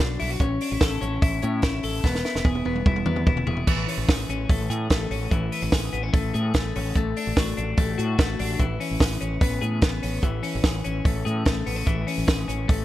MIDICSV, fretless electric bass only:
0, 0, Header, 1, 2, 480
1, 0, Start_track
1, 0, Key_signature, 3, "major"
1, 0, Tempo, 409277
1, 479, Time_signature, 4, 2, 24, 8
1, 15069, End_track
2, 0, Start_track
2, 0, Title_t, "Fretless electric bass"
2, 0, Program_c, 0, 35
2, 0, Note_on_c, 0, 35, 94
2, 193, Note_off_c, 0, 35, 0
2, 247, Note_on_c, 0, 35, 93
2, 440, Note_off_c, 0, 35, 0
2, 467, Note_on_c, 0, 33, 116
2, 668, Note_off_c, 0, 33, 0
2, 838, Note_on_c, 0, 33, 95
2, 936, Note_off_c, 0, 33, 0
2, 953, Note_on_c, 0, 33, 96
2, 1152, Note_off_c, 0, 33, 0
2, 1191, Note_on_c, 0, 33, 101
2, 1390, Note_off_c, 0, 33, 0
2, 1435, Note_on_c, 0, 33, 101
2, 1633, Note_off_c, 0, 33, 0
2, 1679, Note_on_c, 0, 45, 115
2, 1876, Note_off_c, 0, 45, 0
2, 1917, Note_on_c, 0, 33, 101
2, 2114, Note_off_c, 0, 33, 0
2, 2153, Note_on_c, 0, 33, 93
2, 2352, Note_off_c, 0, 33, 0
2, 2390, Note_on_c, 0, 28, 123
2, 2590, Note_off_c, 0, 28, 0
2, 2756, Note_on_c, 0, 28, 103
2, 2855, Note_off_c, 0, 28, 0
2, 2871, Note_on_c, 0, 28, 97
2, 3071, Note_off_c, 0, 28, 0
2, 3114, Note_on_c, 0, 28, 95
2, 3312, Note_off_c, 0, 28, 0
2, 3351, Note_on_c, 0, 28, 104
2, 3551, Note_off_c, 0, 28, 0
2, 3588, Note_on_c, 0, 40, 112
2, 3789, Note_off_c, 0, 40, 0
2, 3832, Note_on_c, 0, 28, 109
2, 4031, Note_off_c, 0, 28, 0
2, 4071, Note_on_c, 0, 28, 104
2, 4271, Note_off_c, 0, 28, 0
2, 4309, Note_on_c, 0, 33, 100
2, 4510, Note_off_c, 0, 33, 0
2, 4662, Note_on_c, 0, 33, 100
2, 4767, Note_off_c, 0, 33, 0
2, 5028, Note_on_c, 0, 33, 98
2, 5229, Note_off_c, 0, 33, 0
2, 5273, Note_on_c, 0, 33, 97
2, 5473, Note_off_c, 0, 33, 0
2, 5507, Note_on_c, 0, 45, 114
2, 5709, Note_off_c, 0, 45, 0
2, 5754, Note_on_c, 0, 33, 116
2, 5953, Note_off_c, 0, 33, 0
2, 5984, Note_on_c, 0, 33, 104
2, 6187, Note_off_c, 0, 33, 0
2, 6232, Note_on_c, 0, 33, 107
2, 6432, Note_off_c, 0, 33, 0
2, 6593, Note_on_c, 0, 33, 104
2, 6694, Note_off_c, 0, 33, 0
2, 6714, Note_on_c, 0, 33, 108
2, 6913, Note_off_c, 0, 33, 0
2, 6954, Note_on_c, 0, 33, 103
2, 7154, Note_off_c, 0, 33, 0
2, 7198, Note_on_c, 0, 33, 98
2, 7396, Note_off_c, 0, 33, 0
2, 7441, Note_on_c, 0, 45, 102
2, 7638, Note_off_c, 0, 45, 0
2, 7679, Note_on_c, 0, 33, 99
2, 7877, Note_off_c, 0, 33, 0
2, 7928, Note_on_c, 0, 33, 109
2, 8122, Note_off_c, 0, 33, 0
2, 8158, Note_on_c, 0, 33, 101
2, 8356, Note_off_c, 0, 33, 0
2, 8525, Note_on_c, 0, 33, 95
2, 8622, Note_off_c, 0, 33, 0
2, 8643, Note_on_c, 0, 33, 97
2, 8839, Note_off_c, 0, 33, 0
2, 8886, Note_on_c, 0, 33, 108
2, 9081, Note_off_c, 0, 33, 0
2, 9120, Note_on_c, 0, 33, 105
2, 9317, Note_off_c, 0, 33, 0
2, 9364, Note_on_c, 0, 45, 107
2, 9559, Note_off_c, 0, 45, 0
2, 9603, Note_on_c, 0, 33, 113
2, 9799, Note_off_c, 0, 33, 0
2, 9848, Note_on_c, 0, 33, 112
2, 10042, Note_off_c, 0, 33, 0
2, 10085, Note_on_c, 0, 33, 116
2, 10280, Note_off_c, 0, 33, 0
2, 10448, Note_on_c, 0, 33, 98
2, 10543, Note_off_c, 0, 33, 0
2, 10564, Note_on_c, 0, 33, 99
2, 10759, Note_off_c, 0, 33, 0
2, 10804, Note_on_c, 0, 33, 90
2, 10999, Note_off_c, 0, 33, 0
2, 11038, Note_on_c, 0, 33, 102
2, 11236, Note_off_c, 0, 33, 0
2, 11282, Note_on_c, 0, 45, 104
2, 11478, Note_off_c, 0, 45, 0
2, 11518, Note_on_c, 0, 33, 97
2, 11716, Note_off_c, 0, 33, 0
2, 11771, Note_on_c, 0, 33, 97
2, 11963, Note_off_c, 0, 33, 0
2, 11996, Note_on_c, 0, 33, 114
2, 12194, Note_off_c, 0, 33, 0
2, 12373, Note_on_c, 0, 33, 104
2, 12466, Note_off_c, 0, 33, 0
2, 12477, Note_on_c, 0, 33, 105
2, 12674, Note_off_c, 0, 33, 0
2, 12732, Note_on_c, 0, 33, 93
2, 12923, Note_off_c, 0, 33, 0
2, 12959, Note_on_c, 0, 33, 100
2, 13155, Note_off_c, 0, 33, 0
2, 13205, Note_on_c, 0, 45, 107
2, 13399, Note_off_c, 0, 45, 0
2, 13445, Note_on_c, 0, 33, 108
2, 13639, Note_off_c, 0, 33, 0
2, 13682, Note_on_c, 0, 33, 99
2, 13877, Note_off_c, 0, 33, 0
2, 13917, Note_on_c, 0, 33, 109
2, 14114, Note_off_c, 0, 33, 0
2, 14280, Note_on_c, 0, 33, 98
2, 14377, Note_off_c, 0, 33, 0
2, 14402, Note_on_c, 0, 33, 98
2, 14597, Note_off_c, 0, 33, 0
2, 14639, Note_on_c, 0, 33, 97
2, 14834, Note_off_c, 0, 33, 0
2, 14889, Note_on_c, 0, 33, 91
2, 15069, Note_off_c, 0, 33, 0
2, 15069, End_track
0, 0, End_of_file